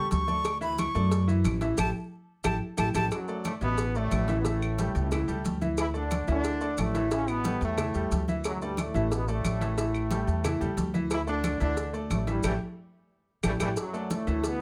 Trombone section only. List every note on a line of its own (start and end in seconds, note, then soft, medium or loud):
3.13 3.44 F#2 medium
3.13 3.43 F#3 loud
3.45 3.53 A2 medium
3.45 3.53 A3 loud
3.62 3.93 B2 medium
3.62 3.93 B3 loud
3.96 4.39 A2 medium
3.96 4.39 A3 loud
4.38 4.45 B3 medium
4.47 5.46 A2 medium
4.47 5.46 A3 loud
5.79 5.87 E3 medium
5.79 5.86 E4 loud
5.95 6.26 D3 medium
5.95 6.26 D4 loud
6.29 6.76 D3 medium
6.29 6.75 D4 loud
6.78 7.12 A2 medium
6.78 7.12 A3 loud
7.12 7.29 C#3 medium
7.12 7.28 C#4 loud
7.28 7.62 B2 medium
7.28 7.61 B3 loud
7.62 8.25 A2 medium
7.62 8.24 A3 loud
8.45 8.61 F#2 medium
8.45 8.60 F#3 loud
8.63 8.79 G2 medium
8.63 8.79 G3 medium
8.78 9.12 A2 medium
8.78 9.11 A3 loud
9.12 9.29 B2 medium
9.12 9.28 B3 loud
9.29 9.79 A2 medium
9.29 9.78 A3 loud
9.79 10.75 A2 medium
9.79 10.74 A3 medium
11.11 11.19 E3 medium
11.11 11.19 E4 loud
11.27 11.59 D3 medium
11.27 11.58 D4 loud
11.60 11.92 D3 medium
11.60 11.92 D4 loud
12.11 12.27 A2 medium
12.11 12.27 A3 medium
12.28 12.43 G2 medium
12.28 12.43 G3 medium
12.44 12.52 E3 loud
12.44 12.52 G3 loud
12.44 12.52 A3 loud
13.44 13.52 E3 loud
13.44 13.53 G3 loud
13.44 13.52 A3 medium
13.61 13.69 E3 loud
13.61 13.69 G3 loud
13.61 13.69 A3 loud
13.78 14.09 F#2 medium
13.78 14.08 F#3 loud
14.11 14.42 A2 medium
14.11 14.41 A3 loud
14.45 14.61 B2 medium
14.45 14.61 B3 loud